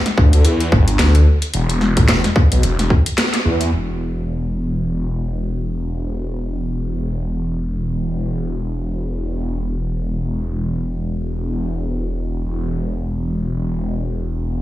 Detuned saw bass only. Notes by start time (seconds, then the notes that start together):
0.18 D2
0.45 E2
0.72 G1
1.00 D2
1.54 E1
1.97 A1
2.09 E1
2.52 B1
2.63 E1
3.45 E2
3.72 E1
12.45 E1